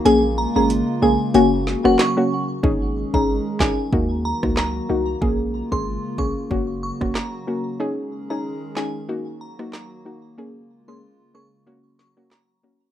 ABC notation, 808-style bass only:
X:1
M:4/4
L:1/16
Q:"Swing 16ths" 1/4=93
K:Bbm
V:1 name="808-style bass" clef=bass
B,,,3 A,,,2 z B,,, z G,,,3 F,,, z4 | A,,,3 A,,,2 z A,,, z E,,3 D,,3 C,,2 | B,,,3 A,,,2 z B,,, z G,,,3 F,,, z4 | z16 |
z16 |]